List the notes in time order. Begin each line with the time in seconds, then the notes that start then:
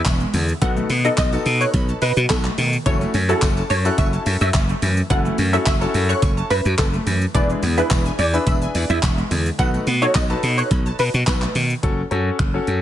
0.05 E1 B3, kick, clap, closed hi-hat, tambourine, shaker
0.20 G#3, shaker
0.34 E2 D3, open hi-hat, tambourine, shaker
0.48 tambourine, shaker
0.61 B1 D#3 B3 D#4 F#4 A4 F#5, kick, closed hi-hat, tambourine, shaker
0.77 A3, shaker
0.90 B2 B3, open hi-hat, tambourine, shaker
1.04 B3 D#4 F#4 A4 D#5, shaker
1.18 B1 D#5, kick, clap, closed hi-hat, tambourine, shaker
1.32 B3 D#4 F#4 A4 A5, tambourine, shaker
1.46 B2, open hi-hat, shaker
1.61 C#5 F#6, tambourine, shaker
1.74 B1 B5, kick, closed hi-hat, tambourine, shaker
1.89 A5, shaker
2.02 B2 B4 D#5, open hi-hat, tambourine, shaker
2.17 B2 F#4, shaker
2.30 B1 B3 A4, kick, clap, closed hi-hat, tambourine, shaker
2.44 A3, clap, shaker
2.58 B2 D#3, open hi-hat, tambourine, shaker
2.73 tambourine, shaker
2.86 F#1 E3 C#4 E4 F#4 A4 C#5, kick, closed hi-hat, tambourine, shaker
3.01 A3, tambourine, shaker
3.14 F#2 C#4, open hi-hat, tambourine, shaker
3.29 C#4 E4 F#4 A4, shaker
3.42 F#1, kick, clap, closed hi-hat, tambourine, shaker
3.57 A5, tambourine, shaker
3.70 F#2 C#5, open hi-hat, shaker
3.85 C#4 E4 F#4 A4 F#6, tambourine, shaker
3.98 F#1 E5 C#6, kick, closed hi-hat, tambourine, shaker
4.13 A5, shaker
4.26 F#2 E5, open hi-hat, tambourine, shaker
4.41 F#2 F#4 E5, shaker
4.54 F#1 C#4, kick, clap, closed hi-hat, tambourine, shaker
4.69 A3, shaker
4.82 F#2 E3, open hi-hat, tambourine, shaker
4.97 tambourine, shaker
5.10 F#1 E3 C#4 E4 F#4 A4 F#5, kick, closed hi-hat, tambourine, shaker
5.25 A3, shaker
5.38 F#2 C#4, open hi-hat, tambourine, shaker
5.53 C#4 E4 F#4 A4 E5, shaker
5.66 F#1 E5, kick, clap, closed hi-hat, tambourine, shaker
5.81 C#4 E4 F#4 A4 A5, tambourine, shaker
5.94 F#2, open hi-hat, shaker
6.09 C#5 F#6, shaker
6.22 F#1 C#6, kick, closed hi-hat, tambourine, shaker
6.37 A5, shaker
6.50 F#2 B4 E5, open hi-hat, tambourine, shaker
6.65 F#2 F#4, tambourine, shaker
6.78 F#1 C#4 A4, kick, clap, closed hi-hat, tambourine, shaker
6.93 A3, shaker
7.06 F#2 E3, open hi-hat, tambourine, shaker
7.21 tambourine, shaker
7.34 E1 D3 D4 E4 G#4 B4 D5, kick, closed hi-hat, tambourine, shaker
7.49 G#3, shaker
7.63 E2 B3, open hi-hat, tambourine, shaker
7.77 D4 E4 G#4 B4, shaker
7.91 E1, kick, clap, closed hi-hat, tambourine, shaker
8.05 G#5, tambourine, shaker
8.19 E2 D5, open hi-hat, shaker
8.33 D4 E4 G#4 B4 E6, shaker
8.47 E1 E5 B5, kick, closed hi-hat, tambourine, shaker
8.62 G#5, shaker
8.75 E2 D5, open hi-hat, tambourine, shaker
8.90 E2 E4 E5, shaker
9.03 E1 B3, kick, clap, closed hi-hat, tambourine, shaker
9.18 G#3, shaker
9.31 E2 D3, open hi-hat, tambourine, shaker
9.46 tambourine, shaker
9.59 B1 D#3 D#4 F#4 A4 B4 F#5, kick, closed hi-hat, tambourine, shaker
9.74 A3, tambourine, shaker
9.87 B2 B3, open hi-hat, tambourine, shaker
10.02 D#4 F#4 A4 C#5, shaker
10.15 B1 D#5, kick, clap, closed hi-hat, tambourine, shaker
10.29 D#4 F#4 A4 B4 A5, tambourine, shaker
10.43 B2, open hi-hat, shaker
10.58 C#5 F#6, tambourine, shaker
10.71 B1 B5, kick, closed hi-hat, tambourine, shaker
10.86 A5, shaker
10.99 B2 B4 D#5, open hi-hat, tambourine, shaker
11.14 B2 F#4, tambourine, shaker
11.27 B1 B3 B4, kick, clap, closed hi-hat, tambourine, shaker
11.42 A3, clap, shaker
11.55 B2 D#3, open hi-hat, tambourine, shaker
11.70 shaker
11.83 F#1 C#4 F#4 A4, kick, closed hi-hat
12.11 F#2 C#4 F#4 A4, closed hi-hat
12.39 F#1, finger snap, kick, closed hi-hat
12.54 C#4 F#4 A4
12.67 F#2, closed hi-hat